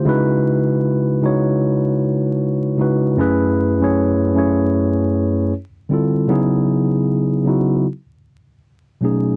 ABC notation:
X:1
M:4/4
L:1/16
Q:"Swing 16ths" 1/4=77
K:C#m
V:1 name="Tine electric piano"
[C,G,DEFB]4- [C,G,DEFB] z [C,G,DEFc]6- [C,G,DEFc] z [C,G,DEFB]2 | [F,,A,CEGB]3 [F,,A,CEGc]3 [F,,A,CEGc]6 z2 [=D,=G,=CE=FA]2 | [C,F,B,DEG]4- [C,F,B,DEG] z [C,F,B,DEF]2 z6 [B,,F,A,CDG]2 |]